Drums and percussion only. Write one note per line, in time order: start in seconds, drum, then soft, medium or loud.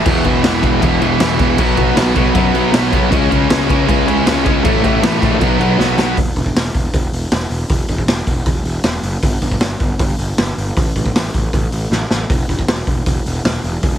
0.06 kick loud
0.06 crash loud
0.24 kick medium
0.24 crash medium
0.44 snare loud
0.44 crash medium
0.63 kick medium
0.63 crash medium
0.82 kick loud
0.82 crash medium
1.02 crash medium
1.20 snare loud
1.20 crash medium
1.39 kick medium
1.39 crash medium
1.58 kick loud
1.58 crash loud
1.77 kick medium
1.77 crash medium
1.97 snare loud
1.97 crash medium
2.16 kick medium
2.16 crash medium
2.35 kick loud
2.35 crash medium
2.55 crash medium
2.74 snare loud
2.74 crash medium
2.93 kick medium
2.93 crash medium
3.12 kick loud
3.12 crash medium
3.31 kick medium
3.31 crash medium
3.50 snare loud
3.50 crash medium
3.70 kick medium
3.70 crash medium
3.89 kick loud
3.89 crash medium
4.08 crash medium
4.27 snare loud
4.27 crash medium
4.46 kick medium
4.46 crash medium
4.65 kick loud
4.65 crash medium
4.84 kick medium
4.84 crash medium
5.03 snare loud
5.03 crash medium
5.22 kick medium
5.22 crash medium
5.41 kick loud
5.41 crash medium
5.61 crash medium
5.80 snare medium
5.99 snare loud
6.17 kick loud
6.17 open hi-hat medium
6.36 kick medium
6.36 open hi-hat medium
6.46 kick medium
6.56 snare loud
6.56 open hi-hat medium
6.74 kick medium
6.74 open hi-hat medium
6.94 kick loud
6.94 open hi-hat medium
7.13 open hi-hat medium
7.32 snare loud
7.32 open hi-hat medium
7.51 open hi-hat medium
7.69 kick loud
7.69 open hi-hat medium
7.88 kick medium
7.88 open hi-hat medium
7.98 kick medium
8.08 snare loud
8.08 open hi-hat medium
8.27 kick medium
8.27 open hi-hat medium
8.46 kick loud
8.46 open hi-hat medium
8.65 open hi-hat medium
8.84 snare loud
8.84 open hi-hat medium
9.03 open hi-hat medium
9.23 kick loud
9.23 open hi-hat medium
9.41 kick medium
9.41 open hi-hat soft
9.51 kick medium
9.61 snare loud
9.61 open hi-hat medium
9.80 kick medium
9.80 open hi-hat soft
9.99 kick loud
9.99 open hi-hat medium
10.19 open hi-hat medium
10.38 snare loud
10.38 open hi-hat medium
10.58 open hi-hat medium
10.77 kick loud
10.77 open hi-hat medium
10.96 kick medium
10.96 open hi-hat soft
11.06 kick medium
11.16 snare loud
11.16 open hi-hat medium
11.34 kick medium
11.34 open hi-hat medium
11.53 kick loud
11.53 open hi-hat medium
11.72 open hi-hat medium
11.92 snare medium
12.11 snare medium
12.30 kick loud
12.30 open hi-hat medium
12.49 kick medium
12.49 open hi-hat medium
12.59 kick medium
12.68 snare loud
12.68 open hi-hat medium
12.87 kick medium
12.87 open hi-hat soft
13.06 kick loud
13.06 open hi-hat medium
13.26 open hi-hat soft
13.45 snare loud
13.45 open hi-hat medium
13.64 open hi-hat medium
13.83 kick loud
13.83 open hi-hat medium